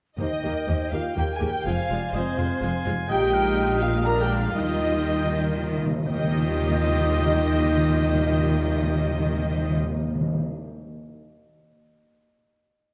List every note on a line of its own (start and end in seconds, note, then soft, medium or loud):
0.17 0.26 D#2 soft
0.17 0.27 D#2 soft
0.17 0.89 D#3 medium
0.17 0.27 A#3 soft
0.17 0.89 D#4 medium
0.17 0.28 G4 soft
0.17 0.31 C5 soft
0.17 0.88 D#5 soft
0.17 0.89 D#5 medium
0.17 0.94 D#5 medium
0.17 1.13 G5 soft
0.43 0.51 D#2 soft
0.43 0.52 D#2 soft
0.43 0.53 A#3 soft
0.43 0.53 G4 soft
0.43 0.69 A#4 soft
0.68 0.76 D#2 soft
0.68 0.77 D#2 soft
0.68 0.76 A#3 soft
0.68 0.76 G4 soft
0.68 0.93 C5 soft
0.91 1.00 D#2 soft
0.91 1.02 D#2 soft
0.91 1.00 A#3 soft
0.91 1.17 F4 medium
0.91 1.00 G4 soft
0.91 1.04 A#4 soft
0.91 1.16 F5 soft
0.91 1.17 F5 soft
0.91 1.01 F5 soft
1.15 1.24 D#2 soft
1.15 1.26 D#2 soft
1.15 1.25 A#3 soft
1.15 1.25 G4 soft
1.15 1.34 G4 medium
1.15 1.68 A#4 soft
1.15 1.32 G5 medium
1.15 1.23 G5 medium
1.15 1.65 G5 soft
1.15 1.25 G5 medium
1.33 1.50 G#4 medium
1.33 1.49 G#5 medium
1.33 1.39 G#5 soft
1.33 1.41 G#5 medium
1.40 1.49 D#2 soft
1.40 1.50 D#2 soft
1.40 1.48 A#3 soft
1.40 1.48 G4 soft
1.48 1.66 G4 medium
1.48 1.65 G5 medium
1.48 1.56 G5 medium
1.48 1.66 G5 medium
1.64 1.74 F1 medium
1.64 1.74 F2 medium
1.64 1.73 G#3 soft
1.64 1.73 F4 soft
1.64 2.14 F4 medium
1.64 1.93 C5 medium
1.64 2.12 F5 medium
1.64 2.14 F5 medium
1.64 2.13 G#5 soft
1.68 2.15 F5 medium
1.90 1.98 F1 medium
1.90 1.99 F2 soft
1.90 1.98 G#3 soft
1.90 1.98 F4 soft
1.90 2.15 D5 soft
2.13 2.22 F1 medium
2.13 2.23 F2 medium
2.13 2.21 G#3 soft
2.13 2.21 F4 soft
2.13 2.84 C5 soft
2.13 2.85 C5 medium
2.13 2.87 C5 soft
2.13 2.39 D#5 medium
2.13 2.62 G#5 soft
2.17 2.86 C4 medium
2.37 2.46 F1 medium
2.37 2.48 F2 soft
2.37 2.45 G#3 soft
2.37 2.46 F4 soft
2.37 3.08 F5 medium
2.61 2.71 F1 medium
2.61 2.71 F2 medium
2.61 2.69 G#3 medium
2.61 2.70 F4 soft
2.61 3.10 G#5 medium
2.85 2.95 F1 medium
2.85 2.94 F2 medium
2.85 2.93 G#3 medium
2.85 2.93 F4 medium
3.09 4.52 A#1 medium
3.09 3.77 A#2 medium
3.09 4.52 A#2 medium
3.09 4.02 G#3 medium
3.09 4.02 D#4 medium
3.09 3.78 G4 loud
3.09 3.56 D#5 medium
3.09 3.77 G5 medium
3.09 3.78 G5 medium
3.09 3.84 G5 medium
3.09 3.36 G5 medium
3.34 4.06 F5 medium
3.57 4.07 D#5 medium
3.81 4.06 F4 medium
3.81 4.06 F5 medium
3.81 4.07 F5 medium
4.05 4.55 G#3 medium
4.05 4.56 D4 medium
4.05 4.23 A#4 medium
4.05 4.57 D5 medium
4.05 4.60 F5 medium
4.05 4.22 A#5 medium
4.05 4.23 A#5 medium
4.22 4.39 G4 medium
4.22 4.39 G5 medium
4.22 4.42 G5 medium
4.22 4.40 G5 medium
4.38 4.55 F4 medium
4.38 4.56 F5 medium
4.38 4.57 F5 medium
4.55 5.84 D#2 medium
4.55 5.84 D#3 medium
4.55 5.86 G3 medium
4.55 5.82 D#4 medium
4.55 5.84 F4 medium
4.55 5.82 D#5 medium
4.55 5.79 D#5 medium
4.55 5.80 D#5 medium
4.55 5.83 D#5 medium
4.55 5.83 G5 medium
4.64 4.70 D#3 soft
4.72 4.79 D#3 soft
4.81 4.87 D#3 soft
4.88 4.94 D#3 soft
5.02 5.10 D#3 soft
5.12 5.19 D#3 soft
5.20 5.25 D#3 soft
5.26 5.33 D#3 medium
5.35 5.40 D#3 medium
5.42 5.48 D#3 medium
5.49 5.56 D#3 medium
5.57 5.63 D#3 medium
5.64 5.70 D#3 medium
5.72 5.77 D#3 medium
5.78 5.85 D#3 medium
5.86 5.92 D#3 medium
5.93 6.01 D#3 medium
6.05 9.76 D#2 medium
6.05 6.11 D#3 medium
6.05 9.76 D#3 medium
6.05 9.76 D#4 medium
6.05 9.76 F4 medium
6.05 9.76 G4 medium
6.05 9.76 D#5 medium
6.05 9.76 G5 medium
6.12 6.18 D#3 medium
6.18 6.24 D#3 medium
6.24 6.31 D#3 medium
6.31 6.37 D#3 medium
6.37 6.43 D#3 medium
6.43 6.50 D#3 medium
6.50 6.56 D#3 medium
6.56 6.62 D#3 medium
6.63 6.69 D#3 medium
6.70 6.76 D#3 medium
6.76 6.82 D#3 medium
6.82 6.88 D#3 medium
6.89 6.95 D#3 medium
6.95 7.01 D#3 medium
7.01 7.07 D#3 medium
7.07 7.13 D#3 medium
7.14 7.20 D#3 medium
7.21 7.27 D#3 medium
7.28 7.34 D#3 medium
7.34 7.40 D#3 medium
7.40 7.46 D#3 medium
7.46 7.52 D#3 medium
7.52 7.59 D#3 medium
7.59 7.65 D#3 medium
7.65 7.71 D#3 medium
7.71 7.77 D#3 medium
7.77 7.83 D#3 medium
7.83 7.89 D#3 medium
7.89 7.96 D#3 medium
7.96 8.02 D#3 medium
8.03 8.09 D#3 medium
8.09 8.15 D#3 medium
8.15 8.21 D#3 medium
8.21 8.27 D#3 medium
8.27 8.33 D#3 medium
8.33 8.39 D#3 medium
8.39 8.45 D#3 medium
8.45 8.51 D#3 medium
8.51 8.57 D#3 medium
8.57 8.63 D#3 medium
8.64 8.70 D#3 medium
8.70 8.77 D#3 medium
8.77 8.83 D#3 medium
8.83 8.89 D#3 medium
8.89 8.95 D#3 medium
8.95 9.01 D#3 medium
9.01 9.07 D#3 medium
9.08 9.14 D#3 medium
9.14 9.20 D#3 medium
9.20 9.26 D#3 medium
9.26 9.33 D#3 medium
9.33 9.39 D#3 medium
9.39 9.45 D#3 medium
9.45 9.51 D#3 medium
9.52 9.58 D#3 medium
9.58 9.64 D#3 medium
9.64 9.70 D#3 medium
9.71 9.77 D#3 medium
9.77 9.83 D#3 medium
9.84 9.90 D#3 medium
9.90 9.96 D#3 medium
9.96 10.02 D#3 medium
10.03 10.08 D#3 medium
10.08 10.15 D#3 medium
10.15 10.21 D#3 medium
10.21 10.27 D#3 medium
10.27 10.33 D#3 medium
10.33 10.40 D#3 medium
10.40 10.46 D#3 medium